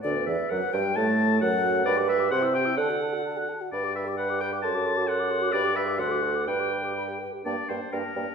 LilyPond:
<<
  \new Staff \with { instrumentName = "Flute" } { \time 2/4 \key g \major \tempo 4 = 130 d''8 e''8 fis''8 g''8 | a''4 fis''4 | b''16 d'''16 b''16 d'''16 c'''16 e'''16 c'''16 e'''16 | a''16 fis''16 a''16 fis''16 a''16 fis''16 a''16 fis''16 |
b''16 d'''16 b''16 d'''16 b''16 d'''16 b''16 d'''16 | c'''16 d'''16 c'''16 d'''16 c'''16 d'''16 c'''16 d'''16 | b''16 d'''16 b''16 d'''16 c'''16 d'''16 c'''16 d'''16 | b''16 d'''16 b''16 d'''16 b''8 g''8 |
\key g \minor g''8 g''8 g''8 g''8 | }
  \new Staff \with { instrumentName = "Oboe" } { \time 2/4 \key g \major d''8 e''8 fis''8 g''8 | a''4 fis''4 | d''8 e''8 fis''8 g''8 | fis''4. r8 |
d''8 e''8 fis''8 g''8 | a''4 fis''4 | d''8 e''8 fis''4 | g''4. r8 |
\key g \minor d''8 c''8 bes'4 | }
  \new Staff \with { instrumentName = "Clarinet" } { \time 2/4 \key g \major b'2 | a'4 a'4 | b'4 c''4 | a'4. r8 |
r4 b'4 | a'2 | g'4 a'4 | b'4. r8 |
\key g \minor d'8 d'8 d'8 d'8 | }
  \new Staff \with { instrumentName = "French horn" } { \time 2/4 \key g \major d8 e8 fis8 g8 | a4 fis4 | b'16 g'16 b'16 g'16 g'16 e'16 g'16 e'16 | a'16 fis'16 a'16 fis'16 a'16 fis'16 a'16 fis'16 |
b'16 g'16 b'16 g'16 b'16 g'16 b'16 g'16 | a'16 fis'16 a'16 fis'16 a'16 fis'16 a'16 fis'16 | b'16 g'16 b'16 g'16 a'16 fis'16 a'16 fis'16 | b'16 g'16 b'16 g'16 b'16 g'16 b'16 g'16 |
\key g \minor bes8 bes8 bes8 bes8 | }
  \new Staff \with { instrumentName = "Bassoon" } { \clef bass \time 2/4 \key g \major d,8 e,8 fis,8 g,8 | a,4 fis,4 | g,4 c4 | d4. r8 |
g,2 | fis,2 | g,4 d,4 | g,4. r8 |
\key g \minor g,8 g,8 g,8 g,8 | }
>>